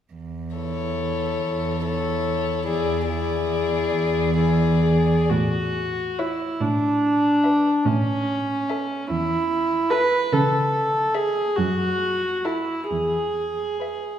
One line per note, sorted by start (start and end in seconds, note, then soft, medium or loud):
0.14 1.28 E2 soft
0.56 1.82 E4 soft
0.56 1.82 A4 soft
0.56 1.82 C#5 soft
1.42 2.52 E2 soft
1.84 2.65 E4 soft
1.84 2.65 A4 soft
1.84 2.65 C#5 soft
2.66 3.79 E2 medium
2.66 3.07 E4 soft
2.66 3.08 G#4 soft
2.66 3.07 D5 soft
3.07 4.34 E4 soft
3.07 4.35 G#4 soft
3.07 4.35 D5 soft
3.94 5.14 E2 soft
4.37 4.83 E4 soft
4.37 5.29 G#4 soft
4.37 5.28 D5 soft
4.85 5.32 G#4 soft
5.30 6.38 A2 soft
5.30 6.20 F#4 medium
6.19 6.63 E4 soft
6.19 6.50 C#5 soft
6.19 6.50 E5 soft
6.61 7.63 A2 soft
6.61 7.88 D4 medium
7.43 7.75 B4 soft
7.43 7.74 E5 soft
7.86 8.87 A2 medium
7.86 9.10 C#4 medium
8.70 9.00 A4 soft
8.70 9.00 E5 soft
9.10 10.10 E2 medium
9.10 9.92 E4 medium
9.91 10.22 A4 soft
9.91 10.34 B4 medium
9.91 10.22 E5 soft
10.33 11.35 C#3 medium
10.33 11.16 A4 medium
11.14 11.58 G#4 medium
11.14 11.47 A4 soft
11.14 11.47 E5 soft
11.57 12.67 F#2 medium
11.57 12.46 F#4 medium
12.45 12.90 E4 medium
12.45 12.79 A4 soft
12.45 12.79 E5 soft
12.90 14.00 E2 soft
12.90 14.19 G#4 soft
13.80 14.13 B4 soft
13.80 14.14 E5 soft